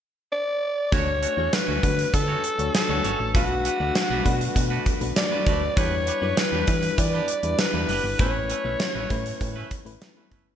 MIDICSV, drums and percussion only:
0, 0, Header, 1, 2, 480
1, 0, Start_track
1, 0, Key_signature, 2, "major"
1, 0, Tempo, 606061
1, 732, Time_signature, 4, 2, 24, 8
1, 8360, End_track
2, 0, Start_track
2, 0, Title_t, "Drums"
2, 732, Note_on_c, 9, 36, 96
2, 732, Note_on_c, 9, 42, 65
2, 811, Note_off_c, 9, 36, 0
2, 811, Note_off_c, 9, 42, 0
2, 971, Note_on_c, 9, 42, 69
2, 1050, Note_off_c, 9, 42, 0
2, 1211, Note_on_c, 9, 42, 84
2, 1212, Note_on_c, 9, 38, 106
2, 1290, Note_off_c, 9, 42, 0
2, 1292, Note_off_c, 9, 38, 0
2, 1452, Note_on_c, 9, 36, 73
2, 1453, Note_on_c, 9, 42, 69
2, 1531, Note_off_c, 9, 36, 0
2, 1532, Note_off_c, 9, 42, 0
2, 1575, Note_on_c, 9, 42, 51
2, 1654, Note_off_c, 9, 42, 0
2, 1692, Note_on_c, 9, 36, 79
2, 1695, Note_on_c, 9, 42, 86
2, 1771, Note_off_c, 9, 36, 0
2, 1774, Note_off_c, 9, 42, 0
2, 1931, Note_on_c, 9, 42, 65
2, 2010, Note_off_c, 9, 42, 0
2, 2052, Note_on_c, 9, 42, 53
2, 2132, Note_off_c, 9, 42, 0
2, 2174, Note_on_c, 9, 42, 82
2, 2175, Note_on_c, 9, 38, 110
2, 2253, Note_off_c, 9, 42, 0
2, 2255, Note_off_c, 9, 38, 0
2, 2411, Note_on_c, 9, 42, 60
2, 2490, Note_off_c, 9, 42, 0
2, 2651, Note_on_c, 9, 36, 107
2, 2651, Note_on_c, 9, 42, 68
2, 2730, Note_off_c, 9, 36, 0
2, 2731, Note_off_c, 9, 42, 0
2, 2891, Note_on_c, 9, 42, 71
2, 2970, Note_off_c, 9, 42, 0
2, 3131, Note_on_c, 9, 42, 84
2, 3132, Note_on_c, 9, 38, 110
2, 3210, Note_off_c, 9, 42, 0
2, 3212, Note_off_c, 9, 38, 0
2, 3370, Note_on_c, 9, 42, 68
2, 3371, Note_on_c, 9, 36, 79
2, 3449, Note_off_c, 9, 42, 0
2, 3450, Note_off_c, 9, 36, 0
2, 3493, Note_on_c, 9, 42, 56
2, 3572, Note_off_c, 9, 42, 0
2, 3611, Note_on_c, 9, 36, 81
2, 3612, Note_on_c, 9, 42, 88
2, 3690, Note_off_c, 9, 36, 0
2, 3691, Note_off_c, 9, 42, 0
2, 3849, Note_on_c, 9, 42, 70
2, 3851, Note_on_c, 9, 36, 77
2, 3929, Note_off_c, 9, 42, 0
2, 3930, Note_off_c, 9, 36, 0
2, 3970, Note_on_c, 9, 42, 51
2, 4049, Note_off_c, 9, 42, 0
2, 4089, Note_on_c, 9, 42, 80
2, 4090, Note_on_c, 9, 38, 106
2, 4168, Note_off_c, 9, 42, 0
2, 4169, Note_off_c, 9, 38, 0
2, 4328, Note_on_c, 9, 42, 59
2, 4329, Note_on_c, 9, 36, 88
2, 4407, Note_off_c, 9, 42, 0
2, 4408, Note_off_c, 9, 36, 0
2, 4569, Note_on_c, 9, 42, 68
2, 4570, Note_on_c, 9, 36, 107
2, 4648, Note_off_c, 9, 42, 0
2, 4649, Note_off_c, 9, 36, 0
2, 4807, Note_on_c, 9, 42, 74
2, 4886, Note_off_c, 9, 42, 0
2, 5046, Note_on_c, 9, 42, 78
2, 5048, Note_on_c, 9, 38, 109
2, 5125, Note_off_c, 9, 42, 0
2, 5127, Note_off_c, 9, 38, 0
2, 5285, Note_on_c, 9, 42, 69
2, 5289, Note_on_c, 9, 36, 78
2, 5364, Note_off_c, 9, 42, 0
2, 5368, Note_off_c, 9, 36, 0
2, 5406, Note_on_c, 9, 42, 53
2, 5485, Note_off_c, 9, 42, 0
2, 5528, Note_on_c, 9, 42, 94
2, 5529, Note_on_c, 9, 36, 80
2, 5607, Note_off_c, 9, 42, 0
2, 5608, Note_off_c, 9, 36, 0
2, 5766, Note_on_c, 9, 42, 69
2, 5845, Note_off_c, 9, 42, 0
2, 5886, Note_on_c, 9, 42, 51
2, 5965, Note_off_c, 9, 42, 0
2, 6008, Note_on_c, 9, 42, 81
2, 6009, Note_on_c, 9, 38, 112
2, 6087, Note_off_c, 9, 42, 0
2, 6088, Note_off_c, 9, 38, 0
2, 6245, Note_on_c, 9, 46, 60
2, 6325, Note_off_c, 9, 46, 0
2, 6488, Note_on_c, 9, 42, 66
2, 6489, Note_on_c, 9, 36, 102
2, 6568, Note_off_c, 9, 42, 0
2, 6569, Note_off_c, 9, 36, 0
2, 6729, Note_on_c, 9, 42, 78
2, 6809, Note_off_c, 9, 42, 0
2, 6967, Note_on_c, 9, 42, 81
2, 6969, Note_on_c, 9, 38, 104
2, 7046, Note_off_c, 9, 42, 0
2, 7048, Note_off_c, 9, 38, 0
2, 7208, Note_on_c, 9, 42, 74
2, 7211, Note_on_c, 9, 36, 77
2, 7288, Note_off_c, 9, 42, 0
2, 7290, Note_off_c, 9, 36, 0
2, 7332, Note_on_c, 9, 42, 54
2, 7411, Note_off_c, 9, 42, 0
2, 7452, Note_on_c, 9, 36, 79
2, 7454, Note_on_c, 9, 42, 87
2, 7531, Note_off_c, 9, 36, 0
2, 7534, Note_off_c, 9, 42, 0
2, 7690, Note_on_c, 9, 42, 67
2, 7692, Note_on_c, 9, 36, 78
2, 7769, Note_off_c, 9, 42, 0
2, 7771, Note_off_c, 9, 36, 0
2, 7812, Note_on_c, 9, 42, 52
2, 7891, Note_off_c, 9, 42, 0
2, 7933, Note_on_c, 9, 42, 87
2, 7934, Note_on_c, 9, 38, 111
2, 8012, Note_off_c, 9, 42, 0
2, 8013, Note_off_c, 9, 38, 0
2, 8169, Note_on_c, 9, 42, 58
2, 8170, Note_on_c, 9, 36, 88
2, 8248, Note_off_c, 9, 42, 0
2, 8249, Note_off_c, 9, 36, 0
2, 8360, End_track
0, 0, End_of_file